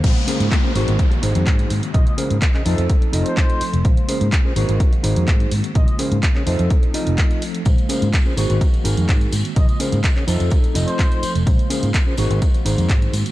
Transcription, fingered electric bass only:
X:1
M:4/4
L:1/16
Q:1/4=126
K:Bbm
V:1 name="Fingered electric bass" clef=bass
B,,, z2 A,, z2 A,,, A,,, z2 A,,, F,, A,, z A,, z | B,,, z2 A,, z2 F,, F,, z2 F,,, z4 F,,, | B,,, z2 A,, z2 A,,, A,,, z2 A,,, F,, A,, z A,, z | B,,, z2 A,, z2 F,, F,, z3 F,,, z4 |
B,,, z2 A,, z2 A,,, A,,, z2 A,,, F,, A,, z A,, z | B,,, z2 A,, z2 F,, F,, z2 F,,, z4 F,,, | B,,, z2 A,, z2 A,,, A,,, z2 A,,, F,, z2 A,, z |]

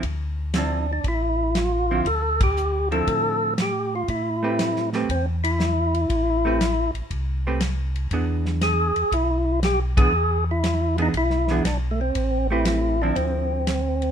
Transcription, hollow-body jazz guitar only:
X:1
M:4/4
L:1/8
Q:"Swing" 1/4=119
K:Am
V:1 name="Hollow-body jazz guitar"
z2 [D,F,CE] z4 [D,F,CE] | z3 [D,F,CE]3 z2 | z [A,CGB]2 [A,CGB] z4 | z [A,CGB] z3 [A,CGB] z2 |
[E,B,D^G]3 z4 [E,B,DG] | z3 [E,B,D^G] z [E,B,DG] z2 | z [A,CGB]2 [D,F,CE]3 z2 |]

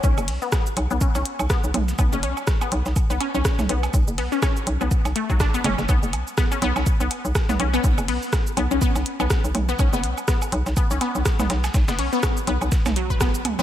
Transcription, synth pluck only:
X:1
M:4/4
L:1/16
Q:"Swing 16ths" 1/4=123
K:F#phr
V:1 name="Synth pluck"
C z2 B, z3 B, C C z2 B, z3 | B, C C z2 B, z3 B, C C z2 B, z | z2 B, C C z2 B, z2 A, F, D B, C z | B, z3 B, C B, z2 B, z3 B, C B, |
z2 B, z3 B, C B, z2 B, z3 B, | C B, z2 B, z3 B, C B, z2 B, z2 | z B, C B, z2 B, z3 F, B B, z2 B, |]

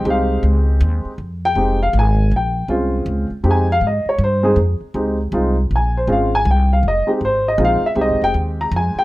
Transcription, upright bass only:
X:1
M:3/4
L:1/8
Q:"Swing" 1/4=159
K:Fm
V:1 name="Upright bass" clef=bass
C,,2 D,,2 E,, z | F,,2 F,,,2 A,,,2 | B,,,2 C,,2 D,, z | F,,2 A,, z G,,2 |
F,, z D,,2 C,,2 | B,,,2 A,,,2 C,,2 | F,,, z A,,,2 B,,, z | (3C,, A,,, F,,, E,,2 F,, z |]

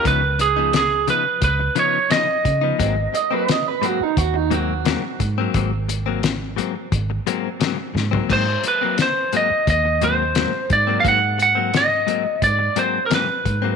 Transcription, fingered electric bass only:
X:1
M:4/4
L:1/8
Q:1/4=87
K:Abmix
V:1 name="Fingered electric bass" clef=bass
D,,4 D,, z2 D, | A,,, z3 E,,3 A,, | A,,,4 A,,, z2 A,, | A,, z3 E,,3 A,, |
A,,4 A,, z2 A,, |]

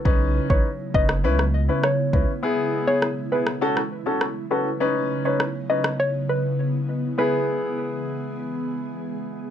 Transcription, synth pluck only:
X:1
M:4/4
L:1/16
Q:1/4=101
K:E
V:1 name="Synth pluck"
z3 c z2 d z4 z c3 z | z3 c z2 B z6 z B z | z3 c z2 d z c z B z4 z | B12 z4 |]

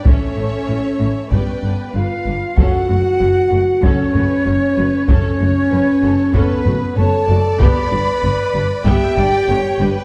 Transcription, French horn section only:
X:1
M:4/4
L:1/8
Q:1/4=96
K:F#phr
V:1 name="French horn section"
C4 B,2 ^E2 | F4 C4 | C4 B,2 A2 | B4 G4 |]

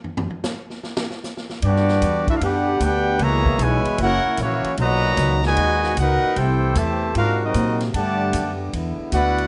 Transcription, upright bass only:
X:1
M:4/4
L:1/8
Q:"Swing" 1/4=152
K:Bphr
V:1 name="Upright bass" clef=bass
z8 | G,,2 E,,2 F,,2 D,,2 | ^C,,2 B,,, z F,,, z ^A,,, z | B,,,2 ^C,,2 ^D,,2 C,, z |
C,,2 E,,2 _A,,2 _B,,2 | G,,2 F,,2 E,, z D,,2 |]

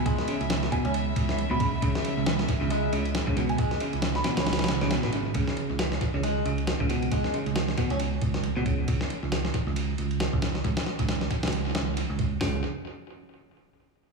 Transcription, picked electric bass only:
X:1
M:4/4
L:1/16
Q:"Swing 16ths" 1/4=136
K:C#m
V:1 name="Picked electric bass" clef=bass
C,, z2 C,,2 z2 C,,2 z C,,2 z C,,2 z | C,, z2 C,,2 z2 C,,2 z C,,2 z C,,2 z | C,, z2 C,,2 z2 C,,2 z C,,2 z G,,,2 z | C,, z2 C,,2 z2 C,,2 z C,,2 z C,,2 z |
C,, z2 C,,2 z2 C,,2 z C,,2 z C,,2 z | C,, z2 C,,2 z2 C,,2 z C,,2 z C,,2 z | C,, z2 C,,2 z2 C,,2 z C,,2 z C,,2 z | C,,2 z12 z2 |]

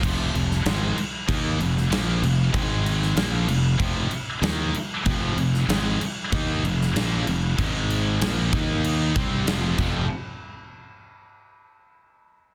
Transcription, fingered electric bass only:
X:1
M:4/4
L:1/8
Q:1/4=95
K:Fm
V:1 name="Fingered electric bass" clef=bass
F,,, F,,, A,,, z E,, F,,, B,,, F,,, | A,,,2 B,,, F,,, F,,, z E,, z | F,,, F,,, A,,, z E,, F,,, B,,, F,,, | A,,,2 B,,, E,,2 z F,,, F,,, |
z8 |]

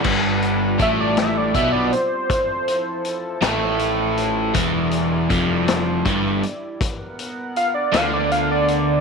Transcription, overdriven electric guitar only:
X:1
M:6/8
L:1/8
Q:3/8=53
K:Gmix
V:1 name="Overdriven electric guitar" clef=bass
[G,,G,]2 [A,,A,]2 [B,,B,] z | z3 [A,,A,]3 | [E,,E,]2 [F,,F,]2 [G,,G,] z | z3 [D,D]3 |]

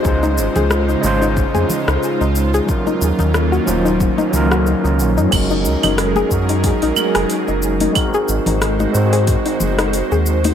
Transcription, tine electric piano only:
X:1
M:4/4
L:1/8
Q:"Swing 16ths" 1/4=91
K:Gblyd
V:1 name="Tine electric piano"
[A,DEFc]3 [A,DEFc]4- [A,DEFc] | [G,DEFB]3 [G,DEFc]2 [G,DEFB]3 | [A,DEGB]3 [A,DEGB]4- [A,DEGB] | [A,CEGB]3 [A,CEGc]4- [A,CEGc] |]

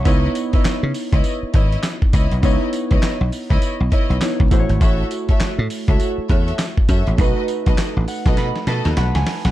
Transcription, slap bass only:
X:1
M:4/4
L:1/16
Q:"Swing 16ths" 1/4=101
K:C#m
V:1 name="Slap bass" clef=bass
C,,2 z3 C, z C,, z2 G,,,2 z2 C,, B,,, | C,, z2 C,, z B,,, z C,, z B,,, z B,,, z C,, A,,, G,,, | A,,,2 z3 A,, z C,, z2 E,,2 z2 F,, A,,, | B,,, z2 B,,, z A,,, z B,,, B,, z B,, D,, B,,, C,, z B,,, |]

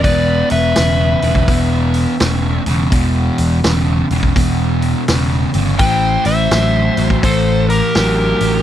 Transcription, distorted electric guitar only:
X:1
M:4/4
L:1/8
Q:"Swing" 1/4=84
K:Em
V:1 name="Distorted electric guitar" clef=bass
[E,,B,,]2 [E,,^C,] [E,,C,] [E,,B,,]2 [E,,C,] [E,,C,] | [E,,B,,]2 [E,,^C,] [E,,C,] [E,,B,,]2 [E,,C,] [E,,C,] | [A,,E,]2 [A,,F,] [A,,F,] [A,,E,]2 [A,,F,] [A,,F,] |]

